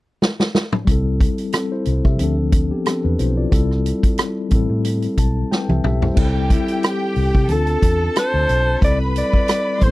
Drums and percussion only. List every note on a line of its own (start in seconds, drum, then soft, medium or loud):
0.22 snare medium
0.40 snare medium
0.55 snare medium
0.72 mid tom medium
0.87 kick medium
0.87 closed hi-hat medium
1.21 kick medium
1.21 closed hi-hat medium
1.38 closed hi-hat soft
1.53 cross-stick loud
1.53 closed hi-hat medium
1.85 closed hi-hat medium
2.05 kick medium
2.19 closed hi-hat medium
2.52 kick medium
2.52 closed hi-hat medium
2.86 cross-stick medium
2.86 closed hi-hat medium
3.19 closed hi-hat medium
3.52 kick loud
3.52 closed hi-hat medium
3.71 cross-stick soft
3.86 closed hi-hat medium
4.03 kick medium
4.03 closed hi-hat soft
4.18 cross-stick loud
4.18 closed hi-hat medium
4.51 kick medium
4.51 closed hi-hat medium
4.85 closed hi-hat medium
5.02 closed hi-hat soft
5.18 kick medium
5.18 closed hi-hat medium
5.52 snare soft
5.69 high tom medium
5.84 mid tom medium
6.02 floor tom medium
6.17 kick loud
6.17 crash medium
6.50 kick medium
6.50 closed hi-hat medium
6.68 closed hi-hat soft
6.83 cross-stick loud
6.83 closed hi-hat medium
7.16 open hi-hat soft
7.35 kick medium
7.49 closed hi-hat medium
7.67 closed hi-hat soft
7.82 kick medium
7.82 closed hi-hat medium
8.16 cross-stick loud
8.16 closed hi-hat medium
8.49 closed hi-hat medium
8.82 kick medium
8.82 closed hi-hat medium
9.16 closed hi-hat medium
9.33 kick medium
9.48 cross-stick loud
9.48 closed hi-hat medium
9.81 kick medium
9.81 closed hi-hat medium